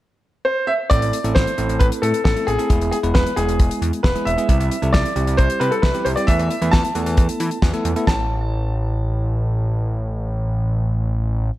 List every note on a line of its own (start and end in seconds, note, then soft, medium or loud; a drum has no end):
0.45 0.69 C5 medium
0.67 0.72 E5 medium
0.90 1.01 A1 loud
0.90 1.17 A3 medium
0.90 1.17 C4 medium
0.90 1.17 E4 medium
0.90 1.17 A4 medium
0.90 1.36 D5 loud
0.90 kick loud
0.90 closed hi-hat medium
1.02 1.12 A1 medium
1.02 closed hi-hat soft
1.13 closed hi-hat medium
1.24 1.35 A1 medium
1.24 1.51 A3 medium
1.24 1.51 C4 medium
1.24 1.51 E4 medium
1.24 1.51 A4 medium
1.24 closed hi-hat soft
1.35 1.46 A1 loud
1.35 1.81 C5 medium
1.35 kick loud
1.35 snare loud
1.47 closed hi-hat soft
1.58 1.68 A1 loud
1.58 2.20 A3 medium
1.58 2.20 C4 medium
1.58 2.20 E4 medium
1.58 2.20 A4 medium
1.58 closed hi-hat medium
1.69 1.80 A1 loud
1.69 closed hi-hat medium
1.79 1.91 A1 loud
1.79 1.85 B4 medium
1.79 kick loud
1.79 closed hi-hat medium
1.92 closed hi-hat medium
2.02 2.13 A2 medium
2.02 2.23 A4 medium
2.02 closed hi-hat medium
2.14 closed hi-hat soft
2.24 2.35 A1 medium
2.24 2.46 A4 medium
2.24 kick loud
2.24 snare loud
2.36 2.54 A3 medium
2.36 2.54 C4 medium
2.36 2.54 E4 medium
2.36 2.54 A4 medium
2.36 closed hi-hat soft
2.47 2.58 A1 medium
2.47 2.89 G#4 loud
2.47 closed hi-hat medium
2.59 2.68 A3 medium
2.59 2.68 C4 medium
2.59 2.68 E4 medium
2.59 2.68 A4 medium
2.59 closed hi-hat medium
2.70 2.80 E1 loud
2.70 2.96 G#3 medium
2.70 2.96 B3 medium
2.70 2.96 E4 medium
2.70 2.96 G#4 medium
2.70 kick loud
2.70 closed hi-hat medium
2.81 2.91 E1 medium
2.81 closed hi-hat soft
2.91 2.97 G#4 medium
2.91 closed hi-hat medium
3.03 3.14 E1 loud
3.03 3.30 G#3 medium
3.03 3.30 B3 medium
3.03 3.30 E4 medium
3.03 3.30 B4 medium
3.03 closed hi-hat soft
3.14 3.25 E1 loud
3.14 3.35 B4 medium
3.14 kick loud
3.14 snare loud
3.26 closed hi-hat soft
3.36 3.47 E1 loud
3.36 3.99 G#3 medium
3.36 3.99 B3 medium
3.36 3.99 E4 medium
3.36 3.78 G#4 medium
3.36 3.99 G#4 medium
3.36 closed hi-hat medium
3.48 3.58 E1 medium
3.48 closed hi-hat medium
3.60 3.70 E1 loud
3.60 kick loud
3.60 closed hi-hat medium
3.71 closed hi-hat medium
3.82 3.92 E2 loud
3.82 closed hi-hat medium
3.93 closed hi-hat soft
4.03 4.14 E1 medium
4.03 4.27 B4 medium
4.03 kick loud
4.03 snare loud
4.15 4.33 G#3 medium
4.15 4.33 B3 medium
4.15 4.33 E4 medium
4.15 4.33 G#4 medium
4.15 closed hi-hat soft
4.25 4.37 E1 medium
4.25 4.95 E5 medium
4.25 closed hi-hat medium
4.38 4.47 G#3 medium
4.38 4.47 B3 medium
4.38 4.47 E4 medium
4.38 4.47 G#4 medium
4.38 closed hi-hat medium
4.49 4.59 C2 loud
4.49 4.76 G3 medium
4.49 4.76 C4 medium
4.49 4.76 E4 medium
4.49 4.75 G4 medium
4.49 kick loud
4.49 closed hi-hat medium
4.60 4.70 C2 loud
4.60 closed hi-hat soft
4.71 closed hi-hat medium
4.82 4.93 C2 loud
4.82 5.09 G3 medium
4.82 5.09 C4 medium
4.82 5.09 E4 medium
4.82 5.09 A4 medium
4.82 closed hi-hat soft
4.93 5.04 C2 loud
4.93 5.39 D5 medium
4.93 kick loud
4.93 snare loud
5.05 closed hi-hat medium
5.16 5.26 C2 loud
5.16 5.78 G3 medium
5.16 5.78 C4 medium
5.16 5.78 E4 medium
5.16 5.78 G4 medium
5.16 closed hi-hat medium
5.27 5.38 C2 loud
5.27 closed hi-hat medium
5.37 5.49 C2 loud
5.37 5.59 C5 medium
5.37 kick loud
5.37 closed hi-hat medium
5.50 closed hi-hat medium
5.60 5.71 C3 loud
5.60 5.72 B4 medium
5.60 closed hi-hat medium
5.71 5.83 A4 medium
5.71 closed hi-hat soft
5.82 5.94 C2 medium
5.82 6.06 B4 medium
5.82 kick loud
5.82 snare loud
5.94 6.12 G3 medium
5.94 6.12 C4 medium
5.94 6.12 E4 medium
5.94 6.12 G4 medium
5.94 closed hi-hat soft
6.05 6.16 C2 medium
6.05 6.10 C5 medium
6.05 closed hi-hat medium
6.16 6.26 G3 medium
6.16 6.26 C4 medium
6.16 6.26 E4 medium
6.16 6.26 G4 medium
6.16 6.28 D5 medium
6.16 closed hi-hat medium
6.27 6.38 E2 loud
6.27 6.55 A3 medium
6.27 6.55 B3 medium
6.27 6.55 E4 medium
6.27 6.55 A4 medium
6.27 6.69 E5 loud
6.27 kick loud
6.27 closed hi-hat medium
6.39 6.49 E2 medium
6.39 closed hi-hat soft
6.50 closed hi-hat medium
6.62 6.72 E2 loud
6.62 6.88 A3 medium
6.62 6.88 B3 medium
6.62 6.88 E4 medium
6.62 6.88 B4 medium
6.62 closed hi-hat soft
6.71 6.83 E2 loud
6.71 7.80 A5 medium
6.71 kick loud
6.71 snare loud
6.85 closed hi-hat soft
6.95 7.05 E2 loud
6.95 7.57 A3 medium
6.95 7.57 B3 medium
6.95 7.57 E4 medium
6.95 7.57 A4 medium
6.95 closed hi-hat medium
7.06 7.17 E2 loud
7.06 closed hi-hat medium
7.17 7.28 E2 medium
7.17 kick loud
7.17 closed hi-hat medium
7.29 closed hi-hat medium
7.40 7.50 E3 medium
7.40 closed hi-hat medium
7.51 closed hi-hat soft
7.62 7.73 E2 loud
7.62 kick loud
7.62 snare loud
7.74 7.91 A3 medium
7.74 7.91 B3 medium
7.74 7.91 E4 medium
7.74 7.91 A4 medium
7.74 closed hi-hat soft
7.85 7.95 E2 medium
7.85 closed hi-hat medium
7.96 8.05 A3 medium
7.96 8.05 B3 medium
7.96 8.05 E4 medium
7.96 8.05 A4 medium
7.96 closed hi-hat medium
8.07 11.51 A1 loud
8.07 11.51 A5 medium
8.07 kick loud
8.07 snare loud